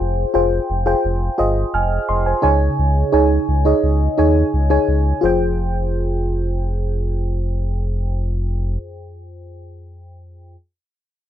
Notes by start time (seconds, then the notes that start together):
Already playing: F4 G#4 C5 G5
0.00 F1
0.34 F1 F4 G#4 C5 G5
0.70 F1
0.86 F4 G#4 C5 G5
1.04 F1
1.38 G1 F4 G#4 C5 D#5
1.74 F1 G#5 F6
2.09 F1 D#5 C6
2.26 C5 G#5
2.42 C#2 C#3 D#4 G#4 C#5 G#5
2.79 C#2
3.12 C#2 D#4 G#4 C#5 G#5
3.48 C#2
3.65 D#4 G#4 C#5 D#5
3.83 C#2
4.18 D#2 D#4 G#4 C#5 G#5
4.54 C#2
4.70 D#4 G#4 C#5 G#5
4.88 C#2
5.21 F1 F2 F4 G#4 C5
5.25 G5